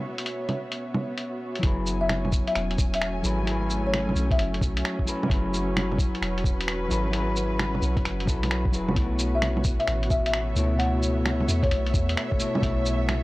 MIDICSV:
0, 0, Header, 1, 7, 480
1, 0, Start_track
1, 0, Key_signature, 3, "minor"
1, 0, Tempo, 458015
1, 1717, Time_signature, 4, 2, 24, 8
1, 13866, End_track
2, 0, Start_track
2, 0, Title_t, "Marimba"
2, 0, Program_c, 0, 12
2, 2107, Note_on_c, 0, 76, 92
2, 2359, Note_off_c, 0, 76, 0
2, 2594, Note_on_c, 0, 76, 89
2, 2842, Note_off_c, 0, 76, 0
2, 3088, Note_on_c, 0, 76, 92
2, 3329, Note_off_c, 0, 76, 0
2, 4053, Note_on_c, 0, 73, 90
2, 4292, Note_off_c, 0, 73, 0
2, 4522, Note_on_c, 0, 76, 89
2, 5175, Note_off_c, 0, 76, 0
2, 9799, Note_on_c, 0, 76, 89
2, 10045, Note_off_c, 0, 76, 0
2, 10266, Note_on_c, 0, 76, 91
2, 10518, Note_off_c, 0, 76, 0
2, 10589, Note_on_c, 0, 76, 85
2, 10694, Note_off_c, 0, 76, 0
2, 10759, Note_on_c, 0, 76, 77
2, 10809, Note_off_c, 0, 76, 0
2, 11306, Note_on_c, 0, 78, 94
2, 11709, Note_off_c, 0, 78, 0
2, 12185, Note_on_c, 0, 73, 93
2, 12512, Note_off_c, 0, 73, 0
2, 13866, End_track
3, 0, Start_track
3, 0, Title_t, "String section"
3, 0, Program_c, 1, 48
3, 0, Note_on_c, 1, 59, 65
3, 0, Note_on_c, 1, 66, 64
3, 0, Note_on_c, 1, 73, 78
3, 0, Note_on_c, 1, 76, 64
3, 1715, Note_on_c, 1, 54, 77
3, 1716, Note_off_c, 1, 66, 0
3, 1893, Note_on_c, 1, 80, 72
3, 2074, Note_on_c, 1, 61, 93
3, 2649, Note_off_c, 1, 76, 0
3, 3079, Note_off_c, 1, 59, 0
3, 3200, Note_on_c, 1, 57, 85
3, 3532, Note_off_c, 1, 73, 0
3, 5273, Note_on_c, 1, 66, 78
3, 5441, Note_off_c, 1, 80, 0
3, 5857, Note_on_c, 1, 71, 88
3, 6008, Note_off_c, 1, 57, 0
3, 9377, Note_on_c, 1, 59, 80
3, 9396, Note_off_c, 1, 54, 0
3, 9861, Note_on_c, 1, 73, 83
3, 10824, Note_on_c, 1, 76, 91
3, 10988, Note_off_c, 1, 71, 0
3, 11033, Note_off_c, 1, 61, 0
3, 13866, Note_off_c, 1, 59, 0
3, 13866, Note_off_c, 1, 66, 0
3, 13866, Note_off_c, 1, 73, 0
3, 13866, Note_off_c, 1, 76, 0
3, 13866, End_track
4, 0, Start_track
4, 0, Title_t, "Synth texture"
4, 0, Program_c, 2, 99
4, 0, Note_on_c, 2, 61, 73
4, 0, Note_on_c, 2, 73, 75
4, 1723, Note_off_c, 2, 61, 0
4, 1723, Note_off_c, 2, 73, 0
4, 9383, Note_on_c, 2, 57, 81
4, 9383, Note_on_c, 2, 69, 78
4, 13866, Note_off_c, 2, 57, 0
4, 13866, Note_off_c, 2, 69, 0
4, 13866, End_track
5, 0, Start_track
5, 0, Title_t, "Clean electric guitar"
5, 0, Program_c, 3, 27
5, 0, Note_on_c, 3, 47, 70
5, 0, Note_on_c, 3, 57, 65
5, 0, Note_on_c, 3, 64, 65
5, 0, Note_on_c, 3, 73, 76
5, 1667, Note_on_c, 3, 54, 80
5, 1672, Note_off_c, 3, 64, 0
5, 1678, Note_off_c, 3, 47, 0
5, 1685, Note_on_c, 3, 64, 77
5, 1693, Note_off_c, 3, 57, 0
5, 1712, Note_on_c, 3, 68, 78
5, 1719, Note_off_c, 3, 73, 0
5, 1734, Note_on_c, 3, 69, 75
5, 1746, Note_off_c, 3, 69, 0
5, 1750, Note_on_c, 3, 71, 93
5, 3352, Note_off_c, 3, 54, 0
5, 3361, Note_off_c, 3, 64, 0
5, 3374, Note_off_c, 3, 68, 0
5, 3378, Note_on_c, 3, 54, 79
5, 3387, Note_on_c, 3, 64, 71
5, 3394, Note_off_c, 3, 71, 0
5, 3396, Note_on_c, 3, 68, 72
5, 3409, Note_on_c, 3, 69, 70
5, 3416, Note_off_c, 3, 69, 0
5, 3420, Note_on_c, 3, 71, 86
5, 3580, Note_off_c, 3, 54, 0
5, 3593, Note_on_c, 3, 54, 87
5, 3604, Note_off_c, 3, 64, 0
5, 3617, Note_off_c, 3, 68, 0
5, 3617, Note_on_c, 3, 64, 78
5, 3629, Note_off_c, 3, 71, 0
5, 3633, Note_on_c, 3, 68, 78
5, 3654, Note_on_c, 3, 69, 75
5, 3676, Note_off_c, 3, 69, 0
5, 3681, Note_on_c, 3, 71, 91
5, 5275, Note_off_c, 3, 54, 0
5, 5287, Note_off_c, 3, 64, 0
5, 5292, Note_on_c, 3, 54, 76
5, 5295, Note_off_c, 3, 68, 0
5, 5298, Note_on_c, 3, 64, 71
5, 5311, Note_on_c, 3, 68, 70
5, 5319, Note_off_c, 3, 71, 0
5, 5320, Note_off_c, 3, 68, 0
5, 5324, Note_on_c, 3, 69, 72
5, 5333, Note_on_c, 3, 71, 86
5, 5499, Note_off_c, 3, 54, 0
5, 5512, Note_on_c, 3, 54, 86
5, 5522, Note_off_c, 3, 64, 0
5, 5534, Note_on_c, 3, 64, 81
5, 5541, Note_off_c, 3, 69, 0
5, 5545, Note_off_c, 3, 71, 0
5, 5555, Note_on_c, 3, 68, 77
5, 5574, Note_on_c, 3, 69, 78
5, 5592, Note_off_c, 3, 69, 0
5, 5597, Note_on_c, 3, 71, 93
5, 7195, Note_off_c, 3, 54, 0
5, 7206, Note_off_c, 3, 64, 0
5, 7215, Note_on_c, 3, 54, 75
5, 7216, Note_off_c, 3, 68, 0
5, 7224, Note_on_c, 3, 64, 71
5, 7235, Note_on_c, 3, 68, 73
5, 7237, Note_off_c, 3, 71, 0
5, 7244, Note_off_c, 3, 68, 0
5, 7248, Note_on_c, 3, 69, 69
5, 7255, Note_on_c, 3, 71, 88
5, 7422, Note_off_c, 3, 54, 0
5, 7435, Note_on_c, 3, 54, 85
5, 7439, Note_off_c, 3, 64, 0
5, 7451, Note_on_c, 3, 64, 79
5, 7463, Note_off_c, 3, 69, 0
5, 7466, Note_off_c, 3, 71, 0
5, 7472, Note_on_c, 3, 68, 77
5, 7496, Note_on_c, 3, 69, 74
5, 7515, Note_off_c, 3, 69, 0
5, 7519, Note_on_c, 3, 71, 90
5, 8634, Note_off_c, 3, 54, 0
5, 8647, Note_on_c, 3, 54, 69
5, 8648, Note_off_c, 3, 64, 0
5, 8658, Note_off_c, 3, 68, 0
5, 8659, Note_on_c, 3, 64, 67
5, 8671, Note_on_c, 3, 68, 67
5, 8677, Note_off_c, 3, 71, 0
5, 8678, Note_off_c, 3, 68, 0
5, 8683, Note_on_c, 3, 69, 69
5, 8689, Note_on_c, 3, 71, 78
5, 9122, Note_off_c, 3, 54, 0
5, 9128, Note_off_c, 3, 64, 0
5, 9136, Note_on_c, 3, 54, 74
5, 9140, Note_off_c, 3, 69, 0
5, 9143, Note_off_c, 3, 71, 0
5, 9143, Note_on_c, 3, 64, 69
5, 9159, Note_on_c, 3, 68, 66
5, 9167, Note_on_c, 3, 69, 69
5, 9171, Note_off_c, 3, 69, 0
5, 9175, Note_on_c, 3, 71, 79
5, 9351, Note_on_c, 3, 47, 85
5, 9367, Note_off_c, 3, 54, 0
5, 9370, Note_off_c, 3, 64, 0
5, 9378, Note_off_c, 3, 68, 0
5, 9378, Note_on_c, 3, 57, 79
5, 9386, Note_off_c, 3, 71, 0
5, 9407, Note_on_c, 3, 64, 78
5, 9436, Note_on_c, 3, 73, 92
5, 11034, Note_off_c, 3, 47, 0
5, 11047, Note_off_c, 3, 57, 0
5, 11050, Note_on_c, 3, 47, 75
5, 11062, Note_off_c, 3, 64, 0
5, 11068, Note_on_c, 3, 57, 72
5, 11077, Note_off_c, 3, 73, 0
5, 11083, Note_on_c, 3, 64, 72
5, 11100, Note_on_c, 3, 73, 84
5, 11253, Note_off_c, 3, 47, 0
5, 11266, Note_on_c, 3, 47, 83
5, 11280, Note_off_c, 3, 57, 0
5, 11293, Note_on_c, 3, 57, 77
5, 11300, Note_off_c, 3, 64, 0
5, 11309, Note_off_c, 3, 73, 0
5, 11325, Note_on_c, 3, 64, 77
5, 11347, Note_on_c, 3, 73, 91
5, 12952, Note_off_c, 3, 47, 0
5, 12965, Note_off_c, 3, 57, 0
5, 12972, Note_on_c, 3, 47, 81
5, 12981, Note_off_c, 3, 64, 0
5, 12987, Note_on_c, 3, 57, 70
5, 12992, Note_off_c, 3, 73, 0
5, 13003, Note_on_c, 3, 64, 70
5, 13018, Note_on_c, 3, 73, 86
5, 13181, Note_off_c, 3, 47, 0
5, 13193, Note_on_c, 3, 47, 85
5, 13207, Note_off_c, 3, 57, 0
5, 13220, Note_off_c, 3, 64, 0
5, 13220, Note_on_c, 3, 57, 78
5, 13228, Note_off_c, 3, 73, 0
5, 13250, Note_on_c, 3, 64, 83
5, 13274, Note_on_c, 3, 73, 95
5, 13866, Note_off_c, 3, 47, 0
5, 13866, Note_off_c, 3, 57, 0
5, 13866, Note_off_c, 3, 64, 0
5, 13866, Note_off_c, 3, 73, 0
5, 13866, End_track
6, 0, Start_track
6, 0, Title_t, "808-style bass"
6, 0, Program_c, 4, 38
6, 1713, Note_on_c, 4, 30, 104
6, 2573, Note_off_c, 4, 30, 0
6, 2682, Note_on_c, 4, 28, 90
6, 3389, Note_off_c, 4, 28, 0
6, 3400, Note_on_c, 4, 32, 82
6, 4348, Note_off_c, 4, 32, 0
6, 4352, Note_on_c, 4, 35, 82
6, 4581, Note_off_c, 4, 35, 0
6, 4597, Note_on_c, 4, 30, 93
6, 4824, Note_off_c, 4, 30, 0
6, 4835, Note_on_c, 4, 35, 107
6, 5063, Note_off_c, 4, 35, 0
6, 5552, Note_on_c, 4, 30, 100
6, 6412, Note_off_c, 4, 30, 0
6, 6513, Note_on_c, 4, 28, 88
6, 7224, Note_off_c, 4, 28, 0
6, 7240, Note_on_c, 4, 32, 84
6, 8188, Note_off_c, 4, 32, 0
6, 8195, Note_on_c, 4, 35, 81
6, 8423, Note_off_c, 4, 35, 0
6, 8443, Note_on_c, 4, 30, 91
6, 8667, Note_off_c, 4, 30, 0
6, 8671, Note_on_c, 4, 35, 104
6, 9155, Note_on_c, 4, 28, 91
6, 9171, Note_off_c, 4, 35, 0
6, 9314, Note_on_c, 4, 30, 97
6, 9329, Note_off_c, 4, 28, 0
6, 9387, Note_off_c, 4, 30, 0
6, 9394, Note_on_c, 4, 35, 103
6, 10253, Note_off_c, 4, 35, 0
6, 10352, Note_on_c, 4, 33, 91
6, 11064, Note_off_c, 4, 33, 0
6, 11068, Note_on_c, 4, 37, 84
6, 12022, Note_off_c, 4, 37, 0
6, 12034, Note_on_c, 4, 40, 80
6, 12262, Note_off_c, 4, 40, 0
6, 12279, Note_on_c, 4, 35, 95
6, 12505, Note_off_c, 4, 35, 0
6, 12511, Note_on_c, 4, 40, 110
6, 12741, Note_off_c, 4, 40, 0
6, 13231, Note_on_c, 4, 35, 101
6, 13866, Note_off_c, 4, 35, 0
6, 13866, End_track
7, 0, Start_track
7, 0, Title_t, "Drums"
7, 192, Note_on_c, 9, 42, 53
7, 272, Note_off_c, 9, 42, 0
7, 272, Note_on_c, 9, 42, 53
7, 377, Note_off_c, 9, 42, 0
7, 510, Note_on_c, 9, 42, 28
7, 510, Note_on_c, 9, 61, 50
7, 615, Note_off_c, 9, 42, 0
7, 615, Note_off_c, 9, 61, 0
7, 752, Note_on_c, 9, 42, 50
7, 856, Note_off_c, 9, 42, 0
7, 989, Note_on_c, 9, 61, 61
7, 1094, Note_off_c, 9, 61, 0
7, 1232, Note_on_c, 9, 42, 50
7, 1337, Note_off_c, 9, 42, 0
7, 1629, Note_on_c, 9, 42, 29
7, 1709, Note_off_c, 9, 42, 0
7, 1709, Note_on_c, 9, 42, 56
7, 1712, Note_on_c, 9, 36, 115
7, 1814, Note_off_c, 9, 42, 0
7, 1817, Note_off_c, 9, 36, 0
7, 1955, Note_on_c, 9, 69, 71
7, 2060, Note_off_c, 9, 69, 0
7, 2195, Note_on_c, 9, 26, 102
7, 2195, Note_on_c, 9, 42, 57
7, 2195, Note_on_c, 9, 61, 55
7, 2300, Note_off_c, 9, 26, 0
7, 2300, Note_off_c, 9, 42, 0
7, 2300, Note_off_c, 9, 61, 0
7, 2355, Note_on_c, 9, 61, 38
7, 2436, Note_on_c, 9, 36, 101
7, 2437, Note_on_c, 9, 69, 73
7, 2460, Note_off_c, 9, 61, 0
7, 2541, Note_off_c, 9, 36, 0
7, 2542, Note_off_c, 9, 69, 0
7, 2593, Note_on_c, 9, 42, 33
7, 2677, Note_off_c, 9, 42, 0
7, 2677, Note_on_c, 9, 26, 59
7, 2677, Note_on_c, 9, 42, 59
7, 2782, Note_off_c, 9, 26, 0
7, 2782, Note_off_c, 9, 42, 0
7, 2837, Note_on_c, 9, 42, 32
7, 2918, Note_on_c, 9, 36, 107
7, 2920, Note_on_c, 9, 69, 74
7, 2942, Note_off_c, 9, 42, 0
7, 3023, Note_off_c, 9, 36, 0
7, 3025, Note_off_c, 9, 69, 0
7, 3078, Note_on_c, 9, 42, 55
7, 3160, Note_off_c, 9, 42, 0
7, 3160, Note_on_c, 9, 26, 102
7, 3160, Note_on_c, 9, 42, 58
7, 3265, Note_off_c, 9, 26, 0
7, 3265, Note_off_c, 9, 42, 0
7, 3399, Note_on_c, 9, 69, 70
7, 3504, Note_off_c, 9, 69, 0
7, 3640, Note_on_c, 9, 42, 56
7, 3745, Note_off_c, 9, 42, 0
7, 3882, Note_on_c, 9, 69, 68
7, 3986, Note_off_c, 9, 69, 0
7, 4125, Note_on_c, 9, 26, 112
7, 4125, Note_on_c, 9, 42, 57
7, 4125, Note_on_c, 9, 61, 53
7, 4230, Note_off_c, 9, 26, 0
7, 4230, Note_off_c, 9, 42, 0
7, 4230, Note_off_c, 9, 61, 0
7, 4285, Note_on_c, 9, 61, 37
7, 4361, Note_on_c, 9, 69, 70
7, 4390, Note_off_c, 9, 61, 0
7, 4466, Note_off_c, 9, 69, 0
7, 4514, Note_on_c, 9, 36, 105
7, 4521, Note_on_c, 9, 42, 33
7, 4601, Note_off_c, 9, 42, 0
7, 4601, Note_on_c, 9, 42, 59
7, 4619, Note_off_c, 9, 36, 0
7, 4706, Note_off_c, 9, 42, 0
7, 4760, Note_on_c, 9, 42, 33
7, 4836, Note_on_c, 9, 36, 104
7, 4845, Note_on_c, 9, 69, 69
7, 4865, Note_off_c, 9, 42, 0
7, 4941, Note_off_c, 9, 36, 0
7, 4950, Note_off_c, 9, 69, 0
7, 4998, Note_on_c, 9, 42, 60
7, 5083, Note_off_c, 9, 42, 0
7, 5083, Note_on_c, 9, 26, 109
7, 5083, Note_on_c, 9, 42, 57
7, 5188, Note_off_c, 9, 26, 0
7, 5188, Note_off_c, 9, 42, 0
7, 5232, Note_on_c, 9, 36, 62
7, 5320, Note_on_c, 9, 69, 68
7, 5337, Note_off_c, 9, 36, 0
7, 5425, Note_off_c, 9, 69, 0
7, 5483, Note_on_c, 9, 61, 66
7, 5554, Note_on_c, 9, 36, 122
7, 5567, Note_on_c, 9, 42, 56
7, 5588, Note_off_c, 9, 61, 0
7, 5659, Note_off_c, 9, 36, 0
7, 5672, Note_off_c, 9, 42, 0
7, 5804, Note_on_c, 9, 69, 67
7, 5909, Note_off_c, 9, 69, 0
7, 6044, Note_on_c, 9, 26, 115
7, 6044, Note_on_c, 9, 42, 59
7, 6044, Note_on_c, 9, 61, 55
7, 6149, Note_off_c, 9, 26, 0
7, 6149, Note_off_c, 9, 42, 0
7, 6149, Note_off_c, 9, 61, 0
7, 6199, Note_on_c, 9, 61, 37
7, 6272, Note_on_c, 9, 36, 112
7, 6283, Note_on_c, 9, 69, 70
7, 6304, Note_off_c, 9, 61, 0
7, 6377, Note_off_c, 9, 36, 0
7, 6388, Note_off_c, 9, 69, 0
7, 6443, Note_on_c, 9, 42, 31
7, 6524, Note_off_c, 9, 42, 0
7, 6524, Note_on_c, 9, 26, 63
7, 6524, Note_on_c, 9, 42, 57
7, 6629, Note_off_c, 9, 26, 0
7, 6629, Note_off_c, 9, 42, 0
7, 6683, Note_on_c, 9, 42, 32
7, 6752, Note_on_c, 9, 36, 106
7, 6768, Note_on_c, 9, 69, 69
7, 6788, Note_off_c, 9, 42, 0
7, 6857, Note_off_c, 9, 36, 0
7, 6872, Note_off_c, 9, 69, 0
7, 6923, Note_on_c, 9, 42, 59
7, 7001, Note_off_c, 9, 42, 0
7, 7001, Note_on_c, 9, 26, 107
7, 7001, Note_on_c, 9, 42, 57
7, 7105, Note_off_c, 9, 26, 0
7, 7105, Note_off_c, 9, 42, 0
7, 7241, Note_on_c, 9, 69, 68
7, 7345, Note_off_c, 9, 69, 0
7, 7475, Note_on_c, 9, 42, 56
7, 7580, Note_off_c, 9, 42, 0
7, 7718, Note_on_c, 9, 69, 68
7, 7822, Note_off_c, 9, 69, 0
7, 7959, Note_on_c, 9, 26, 111
7, 7959, Note_on_c, 9, 42, 57
7, 7959, Note_on_c, 9, 61, 50
7, 8064, Note_off_c, 9, 26, 0
7, 8064, Note_off_c, 9, 42, 0
7, 8064, Note_off_c, 9, 61, 0
7, 8117, Note_on_c, 9, 61, 36
7, 8199, Note_on_c, 9, 69, 70
7, 8221, Note_off_c, 9, 61, 0
7, 8304, Note_off_c, 9, 69, 0
7, 8350, Note_on_c, 9, 36, 107
7, 8353, Note_on_c, 9, 42, 29
7, 8440, Note_off_c, 9, 42, 0
7, 8440, Note_on_c, 9, 26, 63
7, 8440, Note_on_c, 9, 42, 54
7, 8455, Note_off_c, 9, 36, 0
7, 8545, Note_off_c, 9, 26, 0
7, 8545, Note_off_c, 9, 42, 0
7, 8597, Note_on_c, 9, 42, 31
7, 8672, Note_on_c, 9, 36, 108
7, 8679, Note_on_c, 9, 69, 71
7, 8701, Note_off_c, 9, 42, 0
7, 8777, Note_off_c, 9, 36, 0
7, 8784, Note_off_c, 9, 69, 0
7, 8837, Note_on_c, 9, 42, 53
7, 8837, Note_on_c, 9, 61, 35
7, 8918, Note_off_c, 9, 42, 0
7, 8918, Note_on_c, 9, 26, 109
7, 8918, Note_on_c, 9, 42, 55
7, 8942, Note_off_c, 9, 61, 0
7, 9023, Note_off_c, 9, 26, 0
7, 9023, Note_off_c, 9, 42, 0
7, 9069, Note_on_c, 9, 36, 65
7, 9153, Note_on_c, 9, 69, 69
7, 9174, Note_off_c, 9, 36, 0
7, 9258, Note_off_c, 9, 69, 0
7, 9311, Note_on_c, 9, 61, 65
7, 9392, Note_on_c, 9, 36, 118
7, 9394, Note_on_c, 9, 42, 53
7, 9416, Note_off_c, 9, 61, 0
7, 9497, Note_off_c, 9, 36, 0
7, 9499, Note_off_c, 9, 42, 0
7, 9633, Note_on_c, 9, 69, 71
7, 9737, Note_off_c, 9, 69, 0
7, 9872, Note_on_c, 9, 26, 109
7, 9872, Note_on_c, 9, 42, 54
7, 9872, Note_on_c, 9, 61, 51
7, 9977, Note_off_c, 9, 26, 0
7, 9977, Note_off_c, 9, 42, 0
7, 9977, Note_off_c, 9, 61, 0
7, 10027, Note_on_c, 9, 61, 36
7, 10106, Note_on_c, 9, 69, 72
7, 10111, Note_on_c, 9, 36, 107
7, 10131, Note_off_c, 9, 61, 0
7, 10211, Note_off_c, 9, 69, 0
7, 10216, Note_off_c, 9, 36, 0
7, 10270, Note_on_c, 9, 42, 29
7, 10349, Note_off_c, 9, 42, 0
7, 10349, Note_on_c, 9, 26, 61
7, 10349, Note_on_c, 9, 42, 51
7, 10454, Note_off_c, 9, 26, 0
7, 10454, Note_off_c, 9, 42, 0
7, 10511, Note_on_c, 9, 42, 29
7, 10590, Note_on_c, 9, 36, 101
7, 10592, Note_on_c, 9, 69, 73
7, 10616, Note_off_c, 9, 42, 0
7, 10694, Note_off_c, 9, 36, 0
7, 10697, Note_off_c, 9, 69, 0
7, 10753, Note_on_c, 9, 42, 52
7, 10831, Note_off_c, 9, 42, 0
7, 10831, Note_on_c, 9, 26, 104
7, 10831, Note_on_c, 9, 42, 51
7, 10936, Note_off_c, 9, 26, 0
7, 10936, Note_off_c, 9, 42, 0
7, 11069, Note_on_c, 9, 69, 73
7, 11174, Note_off_c, 9, 69, 0
7, 11315, Note_on_c, 9, 42, 52
7, 11420, Note_off_c, 9, 42, 0
7, 11557, Note_on_c, 9, 69, 75
7, 11661, Note_off_c, 9, 69, 0
7, 11796, Note_on_c, 9, 26, 104
7, 11796, Note_on_c, 9, 42, 52
7, 11796, Note_on_c, 9, 61, 54
7, 11901, Note_off_c, 9, 26, 0
7, 11901, Note_off_c, 9, 42, 0
7, 11901, Note_off_c, 9, 61, 0
7, 11952, Note_on_c, 9, 61, 36
7, 12039, Note_on_c, 9, 69, 76
7, 12057, Note_off_c, 9, 61, 0
7, 12144, Note_off_c, 9, 69, 0
7, 12189, Note_on_c, 9, 36, 103
7, 12193, Note_on_c, 9, 42, 31
7, 12275, Note_off_c, 9, 42, 0
7, 12275, Note_on_c, 9, 42, 54
7, 12294, Note_off_c, 9, 36, 0
7, 12380, Note_off_c, 9, 42, 0
7, 12434, Note_on_c, 9, 42, 31
7, 12512, Note_on_c, 9, 36, 100
7, 12517, Note_on_c, 9, 69, 74
7, 12539, Note_off_c, 9, 42, 0
7, 12617, Note_off_c, 9, 36, 0
7, 12622, Note_off_c, 9, 69, 0
7, 12673, Note_on_c, 9, 42, 52
7, 12758, Note_off_c, 9, 42, 0
7, 12758, Note_on_c, 9, 26, 104
7, 12758, Note_on_c, 9, 42, 55
7, 12863, Note_off_c, 9, 26, 0
7, 12863, Note_off_c, 9, 42, 0
7, 12911, Note_on_c, 9, 36, 63
7, 12994, Note_on_c, 9, 69, 74
7, 13016, Note_off_c, 9, 36, 0
7, 13099, Note_off_c, 9, 69, 0
7, 13155, Note_on_c, 9, 61, 65
7, 13233, Note_on_c, 9, 36, 110
7, 13238, Note_on_c, 9, 42, 55
7, 13259, Note_off_c, 9, 61, 0
7, 13338, Note_off_c, 9, 36, 0
7, 13343, Note_off_c, 9, 42, 0
7, 13476, Note_on_c, 9, 69, 78
7, 13581, Note_off_c, 9, 69, 0
7, 13715, Note_on_c, 9, 26, 106
7, 13715, Note_on_c, 9, 42, 56
7, 13715, Note_on_c, 9, 61, 55
7, 13820, Note_off_c, 9, 26, 0
7, 13820, Note_off_c, 9, 42, 0
7, 13820, Note_off_c, 9, 61, 0
7, 13866, End_track
0, 0, End_of_file